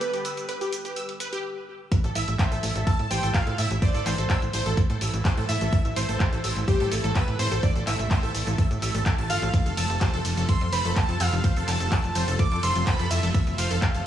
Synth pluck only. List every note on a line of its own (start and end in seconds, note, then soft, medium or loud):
0.14 0.20 G4 medium
0.25 0.32 E6 loud
0.49 0.56 B4 loud
0.61 0.65 G4 loud
0.85 0.92 G4 medium
0.96 1.04 E6 loud
1.20 1.28 B4 loud
1.33 1.37 G4 loud
2.04 2.11 A4 medium
2.15 2.23 E6 loud
2.39 2.47 C5 loud
2.52 2.56 A4 loud
2.76 2.82 A4 medium
2.87 2.94 E6 loud
3.11 3.18 C5 loud
3.23 3.27 A4 loud
3.47 3.54 A4 medium
3.58 3.66 E6 loud
3.82 3.89 C5 loud
3.94 3.99 A4 loud
4.18 4.25 A4 medium
4.30 4.37 E6 loud
4.53 4.61 C5 loud
4.66 4.70 A4 loud
4.90 4.97 A4 medium
5.01 5.09 E6 loud
5.25 5.32 C5 loud
5.37 5.41 A4 loud
5.61 5.68 A4 medium
5.73 5.80 E6 loud
5.96 6.04 C5 loud
6.09 6.13 A4 loud
6.33 6.39 A4 medium
6.44 6.51 E6 loud
6.68 6.75 C5 loud
6.80 6.84 A4 loud
7.04 7.11 A4 medium
7.16 7.23 E6 loud
7.39 7.47 C5 loud
7.52 7.56 A4 loud
7.76 7.82 A4 medium
7.87 7.94 E6 loud
8.11 8.18 C5 loud
8.23 8.27 A4 loud
8.47 8.54 A4 medium
8.58 8.66 E6 loud
8.82 8.93 E5 medium
8.95 9.05 A4 loud
9.06 9.10 A4 medium
9.18 9.28 A5 loud
9.30 9.41 A4 loud
9.66 9.73 A4 medium
9.77 9.85 E6 loud
10.01 10.09 C5 loud
10.14 10.18 A4 loud
10.38 10.44 A4 medium
10.49 10.56 E6 loud
10.73 10.80 C5 loud
10.85 10.89 A4 loud
11.09 11.16 A4 medium
11.20 11.28 E6 loud
11.44 11.51 C5 loud
11.57 11.61 A4 loud
11.80 11.87 A4 medium
11.92 11.99 E6 loud
12.15 12.23 C5 loud
12.28 12.32 A4 loud
12.52 12.58 A4 medium
12.63 12.70 E6 loud
12.87 12.94 C5 loud
12.99 13.03 A4 loud
13.23 13.30 A4 medium
13.34 13.42 E6 loud
13.58 13.66 C5 loud
13.71 13.75 A4 loud
13.95 14.01 A4 medium